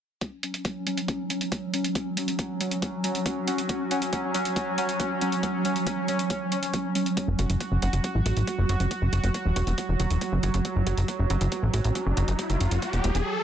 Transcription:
0.21 F#3 C#4, kick, closed hi-hat
0.43 closed hi-hat
0.54 closed hi-hat
0.65 kick, closed hi-hat
0.87 closed hi-hat
0.98 closed hi-hat
1.08 kick, closed hi-hat
1.30 closed hi-hat
1.41 closed hi-hat
1.52 kick, closed hi-hat
1.74 closed hi-hat
1.84 closed hi-hat
1.95 kick, closed hi-hat
2.17 closed hi-hat
2.28 closed hi-hat
2.39 kick, closed hi-hat
2.61 closed hi-hat
2.71 closed hi-hat
2.82 kick, closed hi-hat
3.04 closed hi-hat
3.15 closed hi-hat
3.26 kick, closed hi-hat
3.48 closed hi-hat
3.58 closed hi-hat
3.69 kick, closed hi-hat
3.91 closed hi-hat
4.02 closed hi-hat
4.13 kick, closed hi-hat
4.34 closed hi-hat
4.45 closed hi-hat
4.56 kick, closed hi-hat
4.78 closed hi-hat
4.89 closed hi-hat
5.00 kick, closed hi-hat
5.21 closed hi-hat
5.32 closed hi-hat
5.43 kick, closed hi-hat
5.65 closed hi-hat
5.76 closed hi-hat
5.87 kick, closed hi-hat
6.08 closed hi-hat
6.19 closed hi-hat
6.30 kick, closed hi-hat
6.52 closed hi-hat
6.63 closed hi-hat
6.74 kick, closed hi-hat
6.95 closed hi-hat
7.06 closed hi-hat
7.17 F#4, kick, closed hi-hat
7.28 F#1
7.39 F#1, closed hi-hat
7.50 F#1, closed hi-hat
7.61 kick, closed hi-hat
7.71 F#1
7.82 F#1, closed hi-hat
7.93 F#1, closed hi-hat
8.04 kick, closed hi-hat
8.15 A1
8.26 A1, closed hi-hat
8.37 A1, closed hi-hat
8.47 kick, closed hi-hat
8.58 F#1
8.69 F#1, closed hi-hat
8.80 F#1, closed hi-hat
8.91 kick, closed hi-hat
9.02 F#1
9.13 F#1, closed hi-hat
9.23 F#1, closed hi-hat
9.34 kick, closed hi-hat
9.45 E1
9.56 E1, closed hi-hat
9.67 E1, closed hi-hat
9.78 kick, closed hi-hat
9.89 E1
10.00 E1, closed hi-hat
10.10 E1, closed hi-hat
10.21 kick, closed hi-hat
10.32 F#1
10.43 F#1, closed hi-hat
10.54 F#1, closed hi-hat
10.65 kick, closed hi-hat, riser
10.76 F#1
10.87 F#1, closed hi-hat
10.97 F#1, closed hi-hat
11.08 kick, closed hi-hat
11.19 F#1
11.30 F#1, closed hi-hat
11.41 F#1, closed hi-hat
11.52 kick, closed hi-hat
11.63 A1
11.74 A1, closed hi-hat
11.84 A1, closed hi-hat
11.95 kick, closed hi-hat
12.06 F#1
12.17 F#1, closed hi-hat
12.28 F#1, closed hi-hat
12.39 kick, closed hi-hat
12.50 F#1, closed hi-hat
12.61 F#1, closed hi-hat
12.71 F#1, closed hi-hat
12.82 kick, closed hi-hat
12.93 E1, closed hi-hat
13.04 E1, closed hi-hat
13.15 E1, closed hi-hat

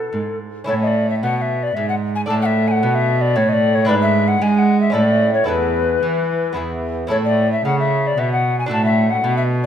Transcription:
Already playing: C#4 E4 A4
0.13 G#2
0.64 C#4 E4 A4 C#5
0.69 A2
0.82 D#5
0.87 D5
1.10 E5
1.23 B2 F#5
1.37 F#5
1.42 E5
1.63 D5
1.75 G#2 E5
1.89 F#5
2.15 G#5
2.26 A2 D4 A4 A5
2.30 A2
2.42 E5 F#5
2.68 F#5 G#5
2.83 B2
2.95 E5
3.21 D5
3.36 A2 C#5
3.49 D#5
3.53 D5
3.75 C#5
3.85 D4 E4 B4 D5
3.89 G#2
4.02 E5
4.28 F#5
4.41 G#3 G#5
4.54 F#5 G#5
4.81 E5
4.90 C#4 E4 A4 D5
4.95 A2
5.34 C#5
5.44 B3 E4 A4 B4
5.48 E2
6.02 E3
6.53 E2 B3 E4 G#4
6.57 E2
7.07 A2 C#4 E4 A4 C#5
7.11 A2
7.24 D5
7.53 E5
7.64 C#3 F#5
7.80 E5
8.07 D5
8.18 B2 E5
8.33 F#5
8.59 G#5
8.66 D4 F#4 A4
8.70 A2 A5
8.85 E5
9.11 F#5
9.24 B2
9.37 E5

